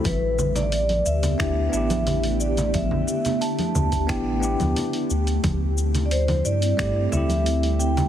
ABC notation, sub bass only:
X:1
M:4/4
L:1/16
Q:1/4=89
K:Am
V:1 name="Sub bass" clef=bass
A,,,6 D,,2 D,,2 A,,,6- | A,,,2 z4 D,,2 A,,,3 D,, z2 D,,2 | D,,6 G,,2 G,,2 D,,6 |]